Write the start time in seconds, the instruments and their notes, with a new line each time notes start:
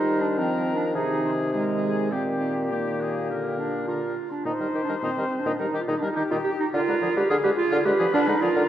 Already playing: bassoon D#3, french horn G3, clarinet D#4, oboe A#4, flute C5
0.20 clarinet D4
0.38 french horn F3, clarinet C4, flute A#4
0.76 clarinet D4
0.94 bassoon C3, french horn D#3, clarinet D#4, oboe G#4, flute G#4
1.24 flute C5
1.52 french horn D#3, clarinet G#3, oboe G#4, flute A#4
1.84 flute G#4
2.11 bassoon A#2, french horn D#3, clarinet C4, oboe G4, flute G4
2.71 french horn D#3, clarinet A#3, oboe G4
3.01 oboe G#4
3.30 french horn D3, oboe A#4
3.58 clarinet D4
3.87 french horn D3, clarinet F4, oboe A#4
4.31 clarinet D4
4.44 french horn A#2, bassoon D#3, clarinet D#4, oboe D#4, flute C5
4.60 bassoon D#3, french horn G3, oboe A#4
4.74 french horn D#3, bassoon D#3, oboe G4
4.84 clarinet D4
4.88 bassoon D#3, french horn G3, oboe A#4
5.02 french horn A#2, bassoon D#3, clarinet C4, oboe D#4
5.16 bassoon D#3, french horn G3, oboe A#4
5.40 clarinet D4
5.45 french horn A#2, bassoon D#3, oboe D#4
5.59 bassoon D#3, french horn G3, clarinet D#4, flute A#4, oboe A#4
5.73 french horn D#3, bassoon D#3, oboe G4
5.80 clarinet F4
5.87 french horn A#2, bassoon D#3, oboe D#4, clarinet D#4, flute G#4
5.98 bassoon D#3, french horn G3, clarinet D4, oboe A#4
6.07 clarinet D#4
6.16 french horn D#3, bassoon D#3, clarinet D#4, oboe G4, flute G4
6.30 french horn A#2, bassoon D#3, oboe D#4, clarinet F4
6.44 clarinet G4
6.60 clarinet D#4
6.73 french horn D3, bassoon D3, clarinet F4, oboe F4, flute A#4
6.88 bassoon D3, french horn G#3, oboe B4
7.02 bassoon D3, french horn F3, oboe G#4
7.16 bassoon D3, french horn G#3, clarinet G4, oboe B4
7.29 french horn D3, bassoon D3, oboe F4, clarinet G#4, flute G#4
7.43 bassoon D3, french horn G#3, clarinet G4, oboe B4
7.57 clarinet F4
7.71 french horn D3, bassoon D3, oboe F4
7.85 bassoon D3, french horn G#3, clarinet G4, oboe B4, flute B4
7.99 bassoon D3, french horn F3, oboe G#4
8.13 french horn D3, bassoon D3, clarinet D4, oboe F4
8.27 bassoon D3, french horn G#3, clarinet D#4, oboe B4
8.41 bassoon D3, french horn F3, clarinet F4, oboe G#4, flute A#4
8.55 french horn D3, bassoon D3, oboe F4